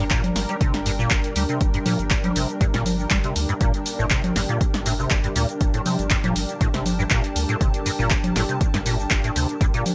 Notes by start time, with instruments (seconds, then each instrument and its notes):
Already playing: analog synth pad G3 D4 A#4, ambient pad D4 A#4 G5
0.00 sub bass G1
0.10 acid bass A#2, kick, clap, closed hi-hat, shaker
0.24 closed hi-hat, low conga, shaker
0.36 sub bass G1, snare, open hi-hat, shaker
0.49 acid bass G3, closed hi-hat, shaker
0.61 acid bass C3, kick, closed hi-hat, shaker
0.74 sub bass G1, snare, closed hi-hat, shaker
0.86 acid bass G2, open hi-hat, shaker
0.99 acid bass A#2, shaker
1.10 sub bass G1, kick, clap, closed hi-hat, shaker
1.24 closed hi-hat, shaker
1.36 sub bass D2, acid bass G3, open hi-hat, shaker
1.49 acid bass C3, closed hi-hat, shaker
1.61 sub bass G1, kick, closed hi-hat, shaker
1.74 acid bass G2, closed hi-hat, shaker
1.86 acid bass A#2, open hi-hat, low conga, shaker
1.99 sub bass G1, closed hi-hat, shaker
2.10 kick, clap, closed hi-hat, shaker
2.24 acid bass G3, closed hi-hat, low conga, shaker
2.36 sub bass G1, acid bass C3, open hi-hat, shaker
2.49 closed hi-hat, shaker
2.61 acid bass G2, kick, closed hi-hat, shaker
2.74 sub bass G1, acid bass A#2, snare, closed hi-hat, shaker
2.86 open hi-hat, low conga, shaker
2.99 shaker
3.10 sub bass G1, acid bass G3, kick, clap, closed hi-hat, shaker
3.24 acid bass C3, closed hi-hat, shaker
3.36 sub bass D2, open hi-hat, shaker
3.49 acid bass G2, closed hi-hat, shaker
3.61 sub bass G1, acid bass A#2, analog synth pad G4, kick, closed hi-hat, shaker
3.74 closed hi-hat, shaker
3.86 open hi-hat, shaker
3.99 sub bass G1, acid bass A2, shaker
4.10 acid bass C3, kick, clap, closed hi-hat, shaker
4.21 ambient pad A5, closed hi-hat, low conga, shaker
4.36 sub bass G1, acid bass G2, snare, open hi-hat, shaker
4.49 acid bass A#2, closed hi-hat, shaker
4.61 kick, closed hi-hat, shaker
4.74 sub bass G1, snare, closed hi-hat, shaker
4.86 acid bass A2, open hi-hat, shaker
4.99 acid bass C3, shaker
5.10 sub bass G1, kick, clap, closed hi-hat, shaker
5.24 acid bass G2, closed hi-hat, shaker
5.36 sub bass D2, acid bass A#2, open hi-hat, shaker
5.49 closed hi-hat, shaker
5.61 sub bass G1, kick, closed hi-hat, shaker
5.74 acid bass A2, closed hi-hat, shaker
5.86 acid bass C3, open hi-hat, low conga, shaker
5.99 sub bass G1, closed hi-hat, shaker
6.10 acid bass G2, kick, clap, closed hi-hat, shaker
6.24 acid bass A#2, closed hi-hat, low conga, shaker
6.36 sub bass G1, open hi-hat, shaker
6.49 closed hi-hat, shaker
6.61 acid bass A2, kick, closed hi-hat, shaker
6.74 sub bass G1, acid bass C3, snare, closed hi-hat, shaker
6.86 open hi-hat, low conga, shaker
6.99 acid bass G2, shaker
7.10 sub bass G1, acid bass A#2, kick, clap, closed hi-hat, shaker
7.24 closed hi-hat, shaker
7.36 sub bass D2, open hi-hat, shaker
7.49 acid bass A2, closed hi-hat, shaker
7.61 sub bass G1, acid bass C3, kick, closed hi-hat, shaker
7.74 closed hi-hat, shaker
7.86 acid bass G2, open hi-hat, shaker
7.99 sub bass G1, acid bass A#2, shaker
8.10 kick, clap, closed hi-hat, shaker
8.24 closed hi-hat, low conga, shaker
8.36 sub bass G1, acid bass A2, snare, open hi-hat, shaker
8.49 acid bass C3, closed hi-hat, shaker
8.61 kick, closed hi-hat, shaker
8.74 sub bass G1, acid bass G2, snare, closed hi-hat, shaker
8.86 acid bass A#2, open hi-hat, shaker
8.99 shaker
9.11 sub bass G1, kick, clap, closed hi-hat, shaker
9.24 acid bass A2, closed hi-hat, shaker
9.36 sub bass D2, acid bass C3, open hi-hat, shaker
9.49 closed hi-hat, shaker
9.61 sub bass G1, acid bass G2, kick, closed hi-hat, shaker
9.74 acid bass A#2, closed hi-hat, shaker
9.86 open hi-hat, low conga, shaker